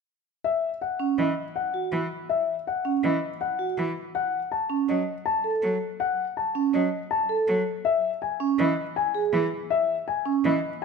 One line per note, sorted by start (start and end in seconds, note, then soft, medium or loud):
0.44 0.68 E5 medium
0.81 1.05 F#5 medium
1.00 1.24 C#4 medium
1.18 1.32 E3 soft
1.18 1.42 D#5 soft
1.56 1.79 F#5 medium
1.74 1.98 F#4 medium
1.92 2.06 E3 soft
2.29 2.53 E5 medium
2.67 2.91 F#5 medium
2.85 3.09 C#4 medium
3.03 3.17 E3 medium
3.03 3.28 D#5 soft
3.41 3.65 F#5 medium
3.59 3.83 F#4 medium
3.78 3.91 E3 soft
4.15 4.39 F#5 medium
4.52 4.76 A5 medium
4.70 4.94 C#4 medium
4.89 5.02 F#3 medium
4.89 5.13 D#5 medium
5.26 5.50 A5 medium
5.44 5.68 A4 medium
5.62 5.76 F#3 medium
6.00 6.24 F#5 medium
6.37 6.61 A5 medium
6.55 6.79 C#4 medium
6.74 6.88 F#3 medium
6.74 6.98 D#5 soft
7.11 7.35 A5 medium
7.29 7.53 A4 medium
7.48 7.62 F#3 medium
7.85 8.09 E5 medium
8.22 8.46 G#5 medium
8.40 8.64 C#4 medium
8.59 8.73 E3 medium
8.59 8.83 D#5 medium
8.96 9.20 G#5 medium
9.15 9.39 G#4 medium
9.33 9.47 E3 medium
9.70 9.94 E5 medium
10.08 10.31 G#5 medium
10.26 10.50 C#4 medium
10.45 10.58 E3 medium
10.45 10.68 D#5 medium
10.82 10.85 G#5 medium